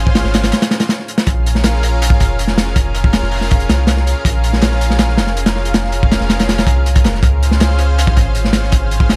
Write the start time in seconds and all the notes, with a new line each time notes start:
Already playing: G#1 C#4 F4 G#4 C5 F5
0.07 kick
0.15 snare, closed hi-hat
0.24 G#1, snare
0.34 snare, closed hi-hat
0.43 snare, closed hi-hat
0.52 snare, closed hi-hat
0.62 snare, closed hi-hat
0.71 snare, closed hi-hat
0.80 snare, closed hi-hat
0.89 snare, closed hi-hat
0.99 snare
1.08 closed hi-hat
1.18 snare, closed hi-hat
1.26 A#1 C#4 F4 G#4 A#4 F5, kick, closed hi-hat
1.46 closed hi-hat
1.55 snare
1.64 snare, closed hi-hat
1.73 snare
1.83 closed hi-hat
2.02 closed hi-hat
2.10 kick
2.20 F1, kick, closed hi-hat
2.39 closed hi-hat
2.47 snare
2.57 C#4 F4 G#4 A#4 F5, snare, closed hi-hat
2.67 snare
2.76 C#4 F4 G#4 A#4 F5, kick, closed hi-hat
2.95 closed hi-hat
3.04 kick
3.13 snare, closed hi-hat
3.22 F1, snare
3.32 open hi-hat
3.41 snare
3.51 kick, closed hi-hat
3.60 closed hi-hat
3.69 C2, snare, closed hi-hat
3.87 snare, closed hi-hat
3.97 snare
4.06 C#4 F4 G#4 A#4 F5, closed hi-hat
4.25 A#1 C#4 F4 G#4 A#4 F5, kick, closed hi-hat
4.44 closed hi-hat
4.53 snare
4.62 snare, closed hi-hat
4.72 snare
4.81 closed hi-hat
4.90 snare
4.99 snare, closed hi-hat
5.09 snare
5.17 F1, snare, closed hi-hat
5.27 snare
5.37 closed hi-hat
5.46 snare, closed hi-hat
5.55 C#4 F4 G#4 A#4 F5, snare
5.65 closed hi-hat
5.74 C#4 F4 G#4 A#4 F5, snare, closed hi-hat
5.84 snare
5.92 closed hi-hat
6.03 kick
6.12 snare, closed hi-hat
6.20 F1, snare
6.30 snare, closed hi-hat
6.40 snare, closed hi-hat
6.49 snare, closed hi-hat
6.58 snare, closed hi-hat
6.67 C2, kick, closed hi-hat
6.86 closed hi-hat
6.96 kick, closed hi-hat
7.04 F1 C#4 F4 G#4 A#4 F5, snare, closed hi-hat
7.15 snare
7.23 C#2 C#4 F4 G#4 C5 F5, kick, closed hi-hat
7.43 closed hi-hat
7.51 snare
7.60 snare, closed hi-hat
7.70 snare
7.79 closed hi-hat
7.99 closed hi-hat
8.07 kick
8.17 G#1, kick, closed hi-hat
8.35 closed hi-hat
8.45 snare
8.53 C#4 F4 G#4 C5 F5, snare, closed hi-hat
8.63 snare
8.72 C#4 F4 G#4 C5 F5, kick, closed hi-hat
8.91 closed hi-hat
9.00 kick
9.09 snare, closed hi-hat